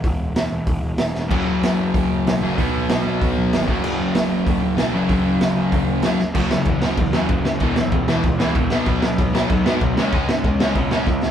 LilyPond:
<<
  \new Staff \with { instrumentName = "Distorted electric guitar" } { \clef bass \time 4/4 \key fis \mixolydian \tempo 4 = 190 r1 | <fis, cis fis>2.~ <fis, cis fis>8 <fis, cis fis>8 | <b, fis b>2.~ <b, fis b>8 <fis, cis fis>8~ | <fis, cis fis>2. <fis, cis fis>8 <fis, cis fis>8~ |
<fis, cis fis>2. <fis, cis fis>8 r8 | <fis, cis fis>8 <fis, cis>8 <fis, cis>8 <fis, cis fis>8 <fis, cis>8 <fis, cis fis>8 <fis, cis>8 <fis, cis>8 | <e, b, e>8 <e, b,>8 <e, b,>8 <e, b, e>8 <e, b,>8 <e, b, e>8 <e, b,>8 <b, fis b>8 | <b, fis b>8 <b, fis>8 <b, fis>8 <b, fis b>8 <b, fis>8 <b, fis b>8 <b, fis>8 <cis gis cis'>8 |
<cis gis cis'>8 <cis gis>8 <cis gis>8 <cis gis cis'>8 <cis gis>8 <cis gis cis'>8 <cis gis>8 <cis gis>8 | }
  \new Staff \with { instrumentName = "Overdriven electric guitar" } { \clef bass \time 4/4 \key fis \mixolydian r1 | <fis, cis fis>2.~ <fis, cis fis>8 <fis, cis fis>8 | <b, fis b>2.~ <b, fis b>8 <fis, cis fis>8~ | <fis, cis fis>2. <fis, cis fis>8 <fis, cis fis>8~ |
<fis, cis fis>2. <fis, cis fis>8 r8 | <fis, cis fis>8 <fis, cis>8 <fis, cis>8 <fis, cis fis>8 <fis, cis>8 <fis, cis fis>8 <fis, cis>8 <fis, cis>8 | <e, b, e>8 <e, b,>8 <e, b,>8 <e, b, e>8 <e, b,>8 <e, b, e>8 <e, b,>8 <b, fis b>8 | <b, fis b>8 <b, fis>8 <b, fis>8 <b, fis b>8 <b, fis>8 <b, fis b>8 <b, fis>8 <cis gis cis'>8 |
<cis gis cis'>8 <cis gis>8 <cis gis>8 <cis gis cis'>8 <cis gis>8 <cis gis cis'>8 <cis gis>8 <cis gis>8 | }
  \new Staff \with { instrumentName = "Overdriven electric guitar" } { \clef bass \time 4/4 \key fis \mixolydian r1 | <fis, cis fis>1 | <b, fis b>2.~ <b, fis b>8 <fis, cis fis>8~ | <fis, cis fis>2.~ <fis, cis fis>8 <fis, cis fis>8~ |
<fis, cis fis>2.~ <fis, cis fis>8 r8 | <fis, cis fis>2~ <fis, cis fis>8 <fis, cis fis>8 <fis, cis fis>4 | <e, b, e>2~ <e, b, e>8 <e, b, e>8 <e, b, e>8 <b, fis b>8~ | <b, fis b>2 <b, fis b>8 <b, fis b>4 <cis gis cis'>8~ |
<cis gis cis'>2 <cis gis cis'>8 <cis gis cis'>4 r8 | }
  \new Staff \with { instrumentName = "Picked electric bass" } { \clef bass \time 4/4 \key fis \mixolydian e,,4 e,,8 e,,8 e,,8 e,,8 e,,8 e,,8 | fis,,8 fis,,8 fis,,4 fis,,8 fis,,8 b,,8 fis,,8 | b,,4 b,,8 b,,8 b,,8 b,,8 gis,,8 fis,,8 | fis,,8 fis,,8 fis,,4 fis,,8 fis,,8 b,,8 fis,,8 |
fis,,4 fis,,8 fis,,8 fis,,8 fis,,8 fis,,8 fis,,8 | fis,,8 cis,8 e,8 fis,,8 e,4 fis,,8 fis,,8 | e,,8 b,,8 cis,8 e,,8 cis,4 e,,8 b,,8 | b,,8 fis,8 gis,8 b,,8 gis,4 b,,8 cis,8 |
cis,8 gis,8 b,8 cis,8 b,4 cis,8 cis,8 | }
  \new DrumStaff \with { instrumentName = "Drums" } \drummode { \time 4/4 <hho bd>4 <hho sn>4 <hho bd>4 <hho sn>8 sn8 | <cymc bd>4 <hho sn>4 <hho bd>4 <hho sn>4 | <hho bd>4 <hho sn>4 <hho bd>4 <hho sn>8 bd8 | cymc4 <hho sn>4 <hho bd>4 <hho sn>4 |
<hho bd>4 <hho sn>4 <hho bd>4 <hho sn>8 sn8 | <cymc bd>8 sn8 <cymc bd>8 sn8 <cymc bd>8 sn8 <cymc bd>8 sn8 | <cymc bd>8 sn8 <cymc bd>8 sn8 <cymc bd>8 sn8 <cymc bd>8 sn8 | <cymc bd>8 sn8 <cymc bd>8 sn8 <cymc bd>8 sn8 <cymc bd>8 sn8 |
<cymc bd>8 sn8 <cymc bd>8 sn8 <cymc bd>8 sn8 <bd sn>8 sn8 | }
>>